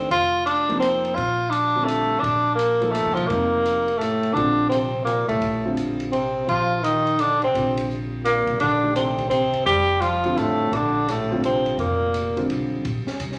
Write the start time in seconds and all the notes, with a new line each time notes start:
0.11 F1 F4, ride
0.46 D4, hi-hat pedal, ride
0.69 C3 F3 A#3 D#4, ride
0.80 C4, hi-hat pedal, ride
1.05 ride
1.15 A#1 F4, ride
1.50 D4, hi-hat pedal, ride
1.75 D3 G3 C4 F4
1.85 A3, hi-hat pedal, ride
2.20 A#1 D4
2.24 ride
2.55 A#3, hi-hat pedal, ride
2.81 F3 A#3 D#4 A4, ride
2.91 A3, hi-hat pedal, ride
3.05 C2
3.14 B1 F3, ride
3.27 F1 C3 F3 A#3, ride
3.31 D#4
3.65 hi-hat pedal, ride
3.88 ride
3.98 A2 A3, hi-hat pedal, ride
4.23 ride
4.33 A#1 D3 G3 C4 D4 F4, ride
4.69 C3 C4, hi-hat pedal, ride
5.05 A#2 A#3, hi-hat pedal, ride
5.27 B1 A2 A3, ride
5.41 A#1, ride
5.65 D3 G3 C4 F4
5.77 hi-hat pedal, ride
6.00 ride
6.12 C3 C4, ride
6.47 A#1 F3 F4, ride
6.83 D#3 D#4, hi-hat pedal, ride
7.07 ride
7.19 D3 D4, hi-hat pedal, ride
7.42 C3 C4, ride
7.54 A#1 D3 G3 C4 F4, ride
7.77 ride
7.91 hi-hat pedal
8.24 A#2 A#3, hi-hat pedal, ride
8.47 B1, ride
8.60 A#1 D3 D4, ride
8.83 D#3 A3 D4 G4
8.96 C3 C4, hi-hat pedal, ride
9.18 kick, ride
9.30 C3 C4, hi-hat pedal, ride
9.53 muted upright bass stroke, ride
9.66 F1 G3 G4, ride
10.01 F3 F4, hi-hat pedal, ride
10.24 D3 G3 C4 F4, ride
10.37 A1 A2 A3, hi-hat pedal, ride
10.72 A#1 D3 D4, ride
11.08 A2 A3, hi-hat pedal, ride
11.31 D3 G3 C4 F4
11.44 C3 C4, hi-hat pedal, ride
11.66 ride
11.78 F1 A#2 A#3, ride
12.14 hi-hat pedal, ride
12.36 D3 G3 C4 F4, ride
12.49 B1, ride
12.85 A#1, ride
13.07 muted upright bass stroke, snare
13.20 C2, hi-hat pedal, ride
13.32 snare